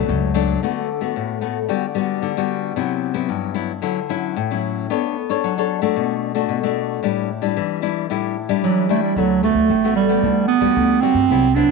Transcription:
0.00 0.30 F#3 medium
0.00 0.31 A3 medium
0.00 0.31 D4 medium
0.09 0.54 C#2 medium
0.09 0.60 F#2 medium
0.34 0.60 F#3 medium
0.34 0.60 A3 medium
0.34 0.60 D4 medium
0.63 1.13 D3 medium
0.63 0.88 A3 soft
0.63 0.88 B3 soft
0.63 0.88 F#4 medium
1.01 1.38 A3 soft
1.01 1.38 B3 soft
1.01 1.38 F#4 soft
1.16 1.67 A2 medium
1.41 1.58 A3 soft
1.41 1.58 B3 medium
1.41 1.58 F#4 medium
1.69 2.20 D3 medium
1.69 1.85 G3 medium
1.69 1.85 B3 soft
1.69 1.85 F#4 medium
1.95 2.31 G3 medium
1.95 2.32 B3 soft
1.95 2.32 F#4 medium
2.22 2.73 D3 medium
2.37 2.72 G3 medium
2.37 2.73 B3 medium
2.37 2.73 F#4 medium
2.76 3.27 C3 medium
2.76 3.12 F#3 medium
2.76 3.12 B3 soft
2.76 3.12 E4 soft
3.14 3.51 F#3 soft
3.14 3.51 B3 medium
3.14 3.51 E4 medium
3.29 3.80 G2 medium
3.54 3.71 F#3 medium
3.54 3.71 B3 soft
3.54 3.71 E4 medium
3.82 4.33 D3 medium
3.82 3.98 F#3 medium
3.82 3.98 C#4 soft
3.82 3.99 E4 medium
4.09 4.35 F#3 medium
4.09 4.35 C#4 medium
4.09 4.35 E4 medium
4.36 4.87 A2 medium
4.51 4.86 F#3 soft
4.51 4.86 C#4 soft
4.51 4.87 E4 medium
4.90 5.41 B3 medium
4.90 5.15 D4 soft
4.90 5.16 A4 soft
4.90 5.15 C#5 medium
5.29 5.52 D4 medium
5.29 5.52 A4 soft
5.29 5.53 C#5 medium
5.44 5.94 F#3 medium
5.58 5.80 D4 medium
5.58 5.80 A4 medium
5.58 5.80 C#5 medium
5.82 6.32 A3 medium
5.82 6.32 D4 medium
5.82 6.32 F#4 medium
5.96 6.47 B2 medium
6.35 6.58 A3 medium
6.35 6.58 D4 medium
6.35 6.59 F#4 medium
6.49 7.00 B2 medium
6.63 6.99 A3 medium
6.63 6.99 D4 medium
6.63 7.00 F#4 medium
7.03 7.54 A2 medium
7.03 7.28 G3 medium
7.03 7.29 D4 medium
7.03 7.29 E4 medium
7.42 7.78 G3 medium
7.42 7.79 D4 medium
7.42 7.79 E4 medium
7.57 8.08 E3 medium
7.82 8.05 G3 medium
7.82 8.06 D4 medium
7.82 8.05 E4 medium
8.10 8.61 A2 medium
8.10 8.35 G3 soft
8.10 8.35 D4 medium
8.10 8.36 E4 medium
8.49 8.86 G3 medium
8.49 8.85 D4 medium
8.49 8.86 E4 medium
8.63 9.15 E3 medium
8.63 8.91 F#3 medium
8.89 9.12 G3 medium
8.89 9.02 A3 medium
8.89 9.13 D4 medium
8.89 9.13 E4 medium
9.03 9.19 G3 medium
9.16 9.51 D2 medium
9.16 9.68 D3 soft
9.16 9.43 F#3 medium
9.16 9.40 A3 soft
9.16 9.40 B3 soft
9.16 9.40 F#4 medium
9.43 9.68 A3 soft
9.43 9.94 A3 medium
9.43 9.69 B3 soft
9.43 9.69 F#4 soft
9.54 9.67 D2 medium
9.69 10.15 A1 medium
9.69 10.21 A2 soft
9.84 10.06 A3 medium
9.84 10.07 B3 medium
9.84 10.07 F#4 medium
9.96 10.46 G3 medium
10.09 10.59 G3 medium
10.09 10.59 B3 medium
10.09 10.59 F#4 medium
10.23 10.46 D2 medium
10.23 10.74 D3 medium
10.48 11.03 B3 medium
10.61 10.74 D2 medium
10.61 10.98 G3 soft
10.61 10.99 B3 medium
10.61 10.99 F#4 medium
10.75 10.99 D2 medium
10.75 11.27 D3 soft
11.01 11.25 G3 medium
11.01 11.26 B3 medium
11.01 11.57 C4 medium
11.01 11.26 F#4 medium
11.14 11.27 G2 medium
11.29 11.64 C2 medium
11.29 11.71 C3 soft
11.29 11.46 F#3 soft
11.29 11.46 B3 medium
11.29 11.47 E4 medium
11.55 11.71 F#3 medium
11.55 11.71 B3 soft
11.55 11.71 D4 medium
11.55 11.71 E4 medium

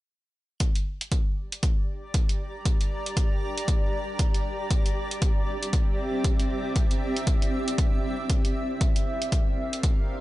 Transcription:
0.60 10.14 G4 medium
0.60 kick loud
0.60 closed hi-hat medium
0.69 10.21 D5 medium
0.75 closed hi-hat soft
1.01 closed hi-hat soft
1.12 kick loud
1.12 closed hi-hat medium
1.22 6.20 A#5 medium
1.52 closed hi-hat soft
1.63 kick loud
1.63 closed hi-hat medium
2.14 kick loud
2.14 closed hi-hat medium
2.29 closed hi-hat soft
2.65 kick loud
2.65 closed hi-hat medium
2.81 closed hi-hat soft
3.06 closed hi-hat soft
3.17 kick loud
3.17 closed hi-hat medium
3.58 closed hi-hat soft
3.68 kick loud
3.68 closed hi-hat medium
4.19 kick loud
4.19 closed hi-hat medium
4.34 closed hi-hat soft
4.45 10.21 C4 medium
4.71 8.81 E5 medium
4.71 kick loud
4.71 closed hi-hat medium
4.86 closed hi-hat soft
5.11 closed hi-hat soft
5.22 kick loud
5.22 closed hi-hat medium
5.63 closed hi-hat soft
5.73 kick loud
5.73 closed hi-hat medium
6.24 kick loud
6.24 closed hi-hat medium
6.40 closed hi-hat soft
6.76 kick loud
6.76 closed hi-hat medium
6.91 closed hi-hat soft
7.16 closed hi-hat soft
7.27 kick loud
7.27 closed hi-hat medium
7.42 closed hi-hat soft
7.68 closed hi-hat soft
7.78 kick loud
7.78 closed hi-hat medium
8.30 kick loud
8.30 closed hi-hat medium
8.45 closed hi-hat soft
8.81 10.21 A#4 medium
8.81 kick loud
8.81 closed hi-hat medium
8.86 10.21 F5 medium
8.96 closed hi-hat soft
9.18 10.21 C6 medium
9.18 closed hi-hat soft
9.32 kick loud
9.32 closed hi-hat medium
9.36 10.21 D6 medium
9.73 closed hi-hat soft
9.83 kick loud
9.83 closed hi-hat medium

